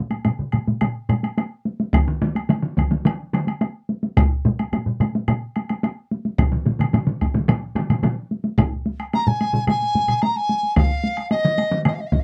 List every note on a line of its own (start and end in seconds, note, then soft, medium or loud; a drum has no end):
0.11 taiko high soft
0.11 high woodblock soft
0.25 taiko low-mid medium
0.25 taiko high medium
0.25 high woodblock soft
0.39 taiko low-mid medium
0.52 taiko low-mid medium
0.52 taiko high soft
0.52 high woodblock soft
0.68 taiko low-mid medium
0.68 taiko high medium
0.81 taiko low-mid medium
0.81 taiko high medium
0.81 high woodblock soft
1.09 taiko low-mid loud
1.09 taiko high soft
1.09 high woodblock soft
1.23 taiko high soft
1.23 high woodblock soft
1.38 taiko high medium
1.38 high woodblock soft
1.65 taiko high soft
1.80 taiko high medium
1.93 taiko medium
1.93 taiko mid medium
1.93 taiko high medium
1.93 high woodblock medium
2.08 taiko mid medium
2.22 taiko mid medium
2.22 taiko high medium
2.35 taiko high medium
2.35 high woodblock soft
2.49 taiko mid medium
2.49 taiko high medium
2.49 high woodblock soft
2.63 taiko mid medium
2.77 taiko medium
2.77 taiko mid medium
2.77 taiko high medium
2.77 high woodblock soft
2.91 taiko mid medium
2.91 taiko high medium
3.05 taiko mid loud
3.05 taiko high medium
3.05 high woodblock medium
3.33 taiko mid loud
3.33 taiko high medium
3.33 high woodblock soft
3.47 taiko high medium
3.47 high woodblock soft
3.61 taiko high medium
3.61 high woodblock soft
3.89 taiko high soft
4.03 taiko high medium
4.17 taiko loud
4.17 taiko low-mid medium
4.17 taiko high medium
4.17 high woodblock medium
4.45 taiko low-mid loud
4.45 taiko high medium
4.59 taiko high medium
4.59 high woodblock soft
4.73 taiko low-mid medium
4.73 taiko high medium
4.73 high woodblock soft
4.86 taiko low-mid medium
5.00 taiko low-mid medium
5.00 taiko high medium
5.00 high woodblock soft
5.15 taiko high medium
5.28 taiko low-mid loud
5.28 taiko high medium
5.28 high woodblock medium
5.56 taiko high medium
5.56 high woodblock soft
5.69 taiko high soft
5.69 high woodblock soft
5.83 taiko high medium
5.83 high woodblock soft
6.11 taiko high medium
6.25 taiko high soft
6.38 taiko loud
6.38 taiko low-mid medium
6.38 taiko mid medium
6.38 taiko high medium
6.38 high woodblock medium
6.52 taiko low-mid medium
6.52 taiko mid medium
6.66 taiko low-mid medium
6.66 taiko mid medium
6.66 taiko high medium
6.79 taiko low-mid medium
6.79 taiko mid medium
6.79 taiko high medium
6.79 high woodblock soft
6.93 taiko low-mid medium
6.93 taiko mid medium
6.93 taiko high medium
6.93 high woodblock soft
7.07 taiko low-mid medium
7.07 taiko mid medium
7.21 taiko medium
7.21 taiko high medium
7.21 high woodblock soft
7.34 taiko low-mid medium
7.34 taiko mid medium
7.34 taiko high medium
7.48 taiko low-mid loud
7.48 taiko mid loud
7.48 taiko high medium
7.48 high woodblock medium
7.75 taiko low-mid medium
7.75 taiko mid loud
7.75 taiko high soft
7.75 high woodblock soft
7.90 taiko low-mid medium
7.90 taiko mid medium
7.90 taiko high medium
7.90 high woodblock soft
8.03 taiko low-mid loud
8.03 taiko mid medium
8.03 taiko high medium
8.03 high woodblock soft
8.31 taiko high soft
8.44 taiko high medium
8.58 taiko medium
8.58 taiko low-mid loud
8.58 taiko high medium
8.58 high woodblock medium
8.72 taiko high soft
8.86 taiko high medium
9.00 taiko high soft
9.00 high woodblock soft
9.13 9.28 A#5 medium
9.13 taiko high medium
9.13 high woodblock soft
9.27 9.67 G#5 medium
9.27 taiko low-mid medium
9.27 taiko high soft
9.41 taiko high medium
9.41 high woodblock soft
9.54 taiko low-mid medium
9.67 10.23 G#5 medium
9.67 taiko low-mid medium
9.67 taiko high medium
9.67 high woodblock medium
9.82 taiko high soft
9.95 taiko low-mid medium
9.95 taiko high soft
10.08 taiko low-mid medium
10.08 high woodblock soft
10.21 10.37 A#5 medium
10.21 taiko high medium
10.21 high woodblock soft
10.36 10.76 G#5 medium
10.36 taiko high soft
10.49 taiko high soft
10.63 taiko high soft
10.76 11.27 F5 medium
10.76 taiko loud
10.76 taiko mid medium
10.76 taiko high medium
10.76 high woodblock medium
10.90 taiko high soft
11.04 taiko high medium
11.17 taiko high soft
11.17 high woodblock soft
11.30 11.81 D#5 medium
11.30 taiko high medium
11.30 high woodblock soft
11.45 taiko mid medium
11.45 taiko high soft
11.58 taiko high medium
11.58 high woodblock soft
11.71 taiko mid medium
11.71 taiko high soft
11.85 11.95 D#5 medium
11.85 taiko mid medium
11.85 taiko high medium
11.85 high woodblock medium
11.93 12.01 F5 medium
11.99 12.08 D#5 medium
11.99 taiko high soft
12.06 12.14 F5 medium
12.12 12.21 D#5 medium
12.12 taiko medium
12.12 taiko mid medium
12.12 taiko high medium
12.19 12.24 F5 medium